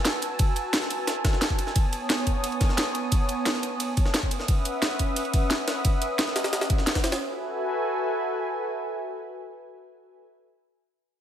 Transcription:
Already playing: F#4 B4 G#5 A5 E6
0.05 snare, closed hi-hat, ride
0.22 closed hi-hat, ride
0.39 kick, closed hi-hat, ride
0.56 closed hi-hat, ride
0.73 snare, closed hi-hat, ride
0.82 snare
0.90 closed hi-hat, ride
1.07 snare, closed hi-hat, ride
1.25 kick, snare, closed hi-hat, ride
1.33 snare
1.41 snare, closed hi-hat, ride
1.50 kick, ride
1.58 closed hi-hat, ride
1.67 snare
1.75 B3 C#5 D#6, kick, closed hi-hat, ride
1.93 closed hi-hat, ride
2.10 snare, closed hi-hat, ride
2.27 kick, closed hi-hat, ride
2.44 closed hi-hat, ride
2.52 ride
2.61 kick, snare, closed hi-hat, ride
2.69 snare
2.78 snare, closed hi-hat, ride
2.95 closed hi-hat, ride
3.12 kick, closed hi-hat, ride
3.29 closed hi-hat, ride
3.46 snare, closed hi-hat, ride
3.54 snare
3.63 closed hi-hat, ride
3.80 closed hi-hat, ride
3.97 kick, closed hi-hat, ride
4.05 snare
4.14 snare, closed hi-hat, ride
4.23 kick, ride
4.31 C#4 B4 E5 F#5 D#6, closed hi-hat, ride
4.40 snare
4.48 kick, closed hi-hat, ride
4.65 closed hi-hat, ride
4.82 snare, closed hi-hat, ride
4.99 kick, closed hi-hat, ride
5.16 closed hi-hat, ride
5.25 ride
5.33 kick, closed hi-hat, ride
5.51 snare, closed hi-hat, ride
5.68 snare, closed hi-hat, ride
5.85 kick, closed hi-hat, ride
6.02 closed hi-hat, ride
6.19 snare, closed hi-hat, ride
6.27 snare
6.36 snare, closed hi-hat, ride
6.44 snare, ride
6.53 snare, closed hi-hat, ride
6.61 snare, ride
6.70 kick, closed hi-hat, ride
6.78 snare
6.87 snare, closed hi-hat, ride
6.95 kick, snare, ride
7.04 snare, closed hi-hat, ride
7.12 snare, ride
7.21 F#4 A4 B4 E5 G#5

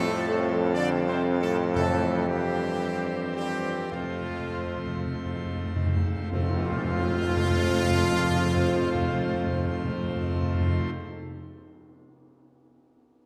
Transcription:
Already playing: F2 A2 F3 G3 A3 C4 A4
0.72 D3 D4 D5
1.06 C3 C4 C5
1.40 A2 A3 A4
1.74 F2 A2 E3 A3 A4 C5
2.28 G2 G3 G4
3.35 G2 G3 G4
3.91 F2 F3 A3 C4 F4
4.02 F2
4.10 F2
4.20 F2
4.30 F2
4.39 F2
4.49 F2
4.58 F2
4.67 F2
4.77 F2
4.86 F2
4.96 F2
5.06 F2
5.15 F2
5.25 F2
5.35 F2
5.46 F2
5.56 F2
5.66 F2
5.76 F2
5.86 F2
5.96 F2
6.06 F2
6.16 F2
6.31 F2 F3 A3 C4 F4 C5, tam-tam
6.39 F2
6.45 F2
6.52 F2
6.59 F2
6.65 F2
6.72 F2
6.78 F2
6.84 F2
6.91 F2
6.98 F2
7.04 F2
7.10 F2
7.17 F2
7.23 F2
7.30 F2
7.37 F2
7.43 F2
7.50 F2
7.57 F2
7.64 F2
7.70 F2
7.77 F2
7.84 F2
7.91 F2
7.97 F2
8.04 F2
8.11 F2
8.17 F2
8.24 F2
8.30 F2
8.37 F2
8.44 F2
8.50 F2
8.56 F2
8.63 F2
8.69 F2
8.76 F2
8.82 F2
8.88 F2
8.95 F2
9.02 F2
9.08 F2
9.14 F2
9.20 F2
9.26 F2
9.33 F2
9.39 F2
9.46 F2
9.52 F2
9.59 F2
9.65 F2
9.72 F2
9.78 F2
9.85 F2
9.91 F2
9.97 F2
10.04 F2
10.10 F2
10.16 F2
10.23 F2
10.30 F2
10.35 F2
10.42 F2
10.49 F2
10.55 F2
10.60 F2
10.67 F2
10.73 F2
10.80 F2
10.87 F2

